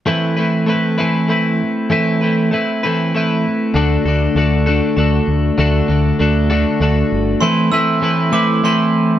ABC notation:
X:1
M:6/8
L:1/8
Q:3/8=65
K:Ador
V:1 name="Glockenspiel"
z6 | z6 | z6 | z6 |
c' e'2 d' c'2 |]
V:2 name="Clean electric guitar"
[A,,E,A,CEB] [A,CEB] [A,CEB] [A,,E,A,CEB] [A,CEB]2 | [A,,E,A,CEB] [A,CEB] [A,CEB] [A,,E,A,CEB] [A,CEB]2 | [D,A,DFA] [DFA] [A,DFA] [D,A,DFA] [A,DFA]2 | [D,A,DFA] [DFA] [A,DFA] [D,A,DFA] [A,DFA]2 |
[A,,E,A,CEB] [A,,E,A,CEB] [A,,E,A,CEB] [A,,E,A,CEB] [A,,E,A,CEB]2 |]
V:3 name="Fingered electric bass" clef=bass
z6 | z6 | D,, D,, D,,2 D,, D,, | D,, D,, D,,2 D,, G,,, |
z6 |]